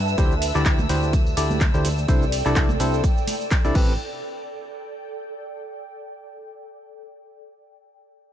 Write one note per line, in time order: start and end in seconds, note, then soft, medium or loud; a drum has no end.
0.00 0.16 G2 loud
0.00 0.95 B4 medium
0.00 0.95 E5 medium
0.00 0.95 A5 medium
0.00 3.75 E6 medium
0.08 tambourine soft
0.08 shaker soft
0.18 0.53 D2 loud
0.18 0.34 D3 loud
0.18 0.34 D4 medium
0.18 0.34 E4 medium
0.18 0.34 G4 medium
0.18 3.74 A4 medium
0.18 0.34 C5 loud
0.18 kick loud
0.18 ride medium
0.18 tambourine medium
0.18 shaker soft
0.32 shaker soft
0.42 open hi-hat loud
0.42 ride medium
0.42 tambourine medium
0.42 shaker medium
0.55 0.87 D2 loud
0.55 0.80 D3 medium
0.55 0.80 D4 medium
0.55 0.80 E4 medium
0.55 0.80 G4 medium
0.55 0.80 D5 loud
0.55 clap soft
0.55 tambourine soft
0.55 shaker soft
0.65 3.75 D5 medium
0.65 kick loud
0.65 clap loud
0.65 ride medium
0.65 tambourine medium
0.65 shaker soft
0.78 tambourine soft
0.78 high conga medium
0.78 shaker soft
0.89 1.35 D2 loud
0.89 1.14 D3 medium
0.89 1.14 D4 medium
0.89 1.14 E4 medium
0.89 1.14 G4 medium
0.89 1.14 C5 medium
0.89 open hi-hat medium
0.89 ride medium
0.89 tambourine medium
0.89 shaker medium
1.03 3.75 G5 medium
1.03 tambourine soft
1.03 shaker soft
1.13 kick loud
1.13 ride medium
1.13 tambourine medium
1.13 shaker soft
1.26 tambourine soft
1.26 shaker soft
1.37 1.72 D2 loud
1.37 1.62 D3 medium
1.37 1.62 D4 medium
1.37 1.62 E4 medium
1.37 1.62 G4 medium
1.37 1.62 D5 medium
1.37 open hi-hat loud
1.37 ride medium
1.37 tambourine medium
1.37 shaker medium
1.51 tambourine soft
1.51 high conga medium
1.51 shaker soft
1.61 kick loud
1.61 clap loud
1.61 ride medium
1.61 tambourine soft
1.61 shaker soft
1.74 2.06 D2 loud
1.74 1.89 D3 medium
1.74 1.89 D4 medium
1.74 1.89 E4 medium
1.74 1.89 G4 medium
1.74 1.89 C5 medium
1.74 tambourine soft
1.74 shaker soft
1.85 open hi-hat medium
1.85 ride medium
1.85 tambourine medium
1.85 high conga medium
1.85 shaker medium
1.98 tambourine soft
1.98 shaker soft
2.08 2.43 C2 loud
2.08 2.25 C3 loud
2.08 2.25 D4 medium
2.08 2.25 E4 medium
2.08 2.25 A4 medium
2.08 2.25 C5 loud
2.08 kick loud
2.08 ride medium
2.08 tambourine medium
2.08 shaker soft
2.22 tambourine soft
2.22 shaker soft
2.32 open hi-hat loud
2.32 ride medium
2.32 tambourine medium
2.32 shaker medium
2.45 2.78 C2 loud
2.45 2.70 C3 loud
2.45 2.70 D4 medium
2.45 2.70 E4 medium
2.45 2.70 A4 medium
2.45 2.70 D5 loud
2.45 clap soft
2.45 tambourine soft
2.45 shaker soft
2.56 kick loud
2.56 clap loud
2.56 ride medium
2.56 tambourine soft
2.56 shaker soft
2.69 tambourine soft
2.69 high conga loud
2.69 shaker soft
2.80 3.02 C2 medium
2.80 3.05 C3 medium
2.80 3.05 D4 medium
2.80 3.05 E4 medium
2.80 3.05 A4 medium
2.80 3.05 C5 medium
2.80 open hi-hat medium
2.80 ride medium
2.80 tambourine medium
2.80 shaker medium
2.93 tambourine soft
2.93 shaker soft
3.04 kick loud
3.04 ride medium
3.04 tambourine soft
3.04 shaker soft
3.18 tambourine soft
3.18 shaker soft
3.27 open hi-hat loud
3.27 ride medium
3.27 tambourine loud
3.27 high conga medium
3.27 shaker medium
3.41 tambourine soft
3.41 shaker soft
3.51 kick loud
3.51 clap loud
3.51 ride medium
3.51 tambourine medium
3.51 shaker soft
3.65 3.75 C2 loud
3.65 3.75 C3 loud
3.65 3.75 D4 medium
3.65 3.75 E4 medium
3.65 3.74 A4 medium
3.65 3.75 D5 loud
3.65 tambourine soft
3.65 shaker soft
3.75 3.97 A1 loud
3.75 3.93 C4 medium
3.75 3.93 G4 medium
3.75 3.93 A4 medium
3.75 5.62 A4 medium
3.75 3.93 B4 loud
3.75 kick loud
3.75 crash medium
3.75 tambourine medium
3.83 5.62 D5 medium
3.88 tambourine soft
4.14 5.86 G5 medium